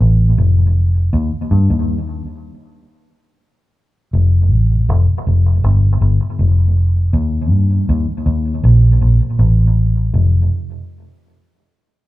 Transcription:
0.01 A1
0.38 F1
1.13 D#2
1.51 G2
1.70 D#2
4.13 F1
4.51 A1
4.89 F1
5.27 F1
5.64 G1
6.01 G1
6.39 F1
7.13 D#2
7.51 G2
7.89 D#2
8.26 D#2
8.64 A#1
9.01 A#1
9.39 A1
10.14 F1

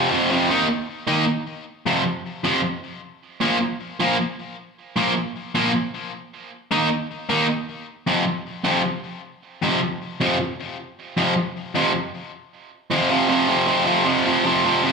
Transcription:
Already playing: C3 F3
0.10 F2 C3 F3
0.30 F2 C3 F3
0.49 D#3 A#3 D#4
1.07 D#3 A#3 D#4
1.86 F2 C3 F3
2.44 F2 C3 F3
3.41 A#2 F3 A#3
4.00 A#2 F3 A#3
4.96 A#2 F3 A#3
5.55 A#2 F3 A#3
6.71 D#3 A#3 D#4
7.29 D#3 A#3 D#4
8.07 F2 C3 F3
8.64 F2 C3 F3
9.62 F2 C3 F3
10.20 F2 C3 F3
11.17 F2 C3 F3
11.75 F2 C3 F3
12.91 F2 C3 F3
13.10 F2 C3 F3
13.29 F2 C3 F3
13.48 F2 C3 F3
13.67 F2 C3 F3
13.86 F2 C3 F3
14.06 F2 C3 F3
14.26 F2 C3 F3
14.45 F2 C3 F3
14.65 F2 C3 F3
14.84 F2 C3 F3

